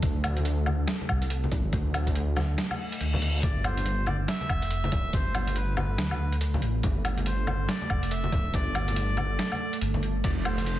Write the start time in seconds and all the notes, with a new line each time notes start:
Already playing: A3 A4
0.02 D2, kick, closed hi-hat, high conga
0.24 closed hi-hat, low conga, low woodblock
0.37 closed hi-hat, high conga
0.45 closed hi-hat
0.66 high conga, low woodblock
0.88 snare, closed hi-hat
1.01 high conga
1.09 C2, kick, low woodblock
1.22 closed hi-hat
1.30 closed hi-hat
1.44 high conga
1.52 kick, closed hi-hat, low conga
1.73 D2, kick, closed hi-hat, high conga
1.94 closed hi-hat, low conga, low woodblock
2.07 kick, closed hi-hat, high conga
2.15 closed hi-hat
2.36 snare, high conga, low woodblock
2.58 snare, closed hi-hat, reverse cymbal
2.71 high conga, low woodblock
2.92 closed hi-hat
3.01 D2, closed hi-hat
3.13 high conga, low conga
3.22 closed hi-hat
3.43 G1 A3 A4 D5, kick, closed hi-hat, high conga
3.64 C5, closed hi-hat, low conga, low woodblock
3.77 closed hi-hat, high conga
3.86 closed hi-hat
4.06 D5, high conga, low woodblock
4.28 E5, snare, closed hi-hat
4.41 high conga
4.50 F1, kick, low woodblock
4.62 closed hi-hat
4.71 closed hi-hat
4.84 high conga
4.92 kick, closed hi-hat, low conga
5.13 G1 C5, kick, closed hi-hat, high conga
5.35 closed hi-hat, low conga, low woodblock
5.47 closed hi-hat, high conga
5.56 B4, closed hi-hat
5.77 B4, high conga, low woodblock
5.98 D2, snare, closed hi-hat
6.11 high conga, low woodblock
6.32 closed hi-hat
6.41 closed hi-hat
6.54 high conga, low conga
6.62 A1, closed hi-hat
6.83 G1, kick, closed hi-hat, high conga
7.05 closed hi-hat, low conga, low woodblock
7.18 closed hi-hat, high conga
7.26 C5, closed hi-hat
7.47 high conga, low woodblock
7.69 D5, snare, closed hi-hat
7.82 high conga
7.90 F1, kick, low woodblock
8.03 closed hi-hat
8.11 E5, closed hi-hat
8.24 high conga
8.32 kick, closed hi-hat, low conga
8.54 G1 D5, kick, closed hi-hat, high conga
8.75 closed hi-hat, low conga, low woodblock
8.88 closed hi-hat, high conga
8.96 closed hi-hat
9.17 high conga, low woodblock
9.39 snare, closed hi-hat
9.52 high conga, low woodblock
9.73 closed hi-hat
9.81 G1, closed hi-hat
9.94 high conga, low conga
10.03 closed hi-hat
10.24 F1 D5, kick, closed hi-hat, ride, high conga
10.40 D5
10.45 C5, closed hi-hat, low conga, low woodblock
10.57 closed hi-hat, high conga
10.66 closed hi-hat, ride